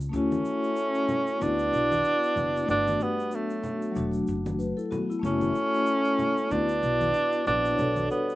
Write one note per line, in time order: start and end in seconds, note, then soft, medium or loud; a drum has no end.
0.01 shaker medium
0.09 0.40 D2 medium
0.09 1.36 A3 medium
0.09 1.42 A3 loud
0.09 1.37 C#4 medium
0.14 1.43 C#4 loud
0.14 1.39 E4 medium
0.14 1.40 F#4 medium
0.14 shaker medium
0.32 high conga medium
0.32 shaker soft
0.45 shaker soft
0.64 shaker soft
0.76 shaker medium
0.95 shaker soft
1.08 low conga medium
1.08 shaker soft
1.27 shaker soft
1.37 2.64 B3 medium
1.37 2.68 B3 loud
1.37 2.65 D4 medium
1.41 1.68 D2 loud
1.41 2.69 D4 loud
1.41 2.66 E4 medium
1.41 2.67 F#4 medium
1.41 shaker medium
1.59 shaker medium
1.73 2.00 B1 medium
1.73 shaker soft
1.92 high conga medium
1.92 shaker medium
2.04 shaker medium
2.23 shaker soft
2.36 2.63 F#1 medium
2.36 high conga soft
2.36 low conga medium
2.36 shaker soft
2.56 shaker soft
2.64 3.91 A3 medium
2.64 3.93 B3 medium
2.64 3.01 B3 medium
2.68 2.95 G1 loud
2.68 3.94 D4 medium
2.68 3.04 D4 loud
2.68 3.95 F#4 medium
2.68 shaker medium
2.88 high conga medium
2.88 shaker soft
3.00 3.34 G3 medium
3.00 3.36 B3 medium
3.00 shaker soft
3.20 shaker soft
3.31 4.28 F#3 medium
3.31 4.29 A3 medium
3.31 shaker medium
3.50 shaker soft
3.63 low conga medium
3.63 shaker soft
3.82 shaker soft
3.91 5.19 F#3 medium
3.91 5.18 A3 medium
3.96 4.23 E1 medium
3.96 4.58 D4 medium
3.96 4.59 F#4 medium
3.96 shaker medium
4.13 shaker medium
4.27 4.71 F#1 medium
4.27 shaker medium
4.46 high conga medium
4.46 shaker soft
4.59 4.77 F#4 soft
4.59 4.77 B4 medium
4.59 shaker medium
4.77 4.91 E4 medium
4.77 4.90 A4 medium
4.77 shaker soft
4.91 5.09 B3 medium
4.91 5.08 F#4 medium
4.91 high conga soft
4.91 low conga medium
4.91 shaker soft
5.10 5.40 B3 medium
5.10 5.23 E4 medium
5.10 shaker soft
5.19 5.50 F#1 medium
5.19 6.47 A3 medium
5.19 6.48 C#4 medium
5.24 6.53 A3 loud
5.24 6.53 C#4 loud
5.24 6.49 E4 medium
5.24 6.50 F#4 medium
5.24 shaker medium
5.41 high conga medium
5.41 shaker soft
5.55 shaker soft
5.74 shaker soft
5.86 shaker medium
6.05 shaker soft
6.19 low conga medium
6.19 shaker soft
6.37 shaker soft
6.47 7.74 B3 medium
6.47 7.75 D4 medium
6.47 7.46 D4 loud
6.47 shaker medium
6.51 6.78 D2 loud
6.51 7.46 B3 medium
6.51 7.76 E4 medium
6.51 7.77 F#4 medium
6.69 shaker medium
6.83 7.10 B1 medium
6.83 shaker soft
7.01 high conga medium
7.01 shaker soft
7.14 shaker medium
7.32 shaker soft
7.46 7.74 A#1 medium
7.46 8.06 B3 medium
7.46 8.07 D4 loud
7.46 high conga soft
7.46 low conga medium
7.46 shaker soft
7.65 shaker soft
7.74 8.35 D4 medium
7.74 8.35 C#5 medium
7.78 8.06 B1 medium
7.78 8.35 F#4 medium
7.78 8.35 A4 medium
7.78 shaker medium
7.96 high conga medium
7.96 shaker soft
8.10 8.35 G3 medium
8.10 8.35 B3 medium
8.10 shaker soft
8.30 shaker soft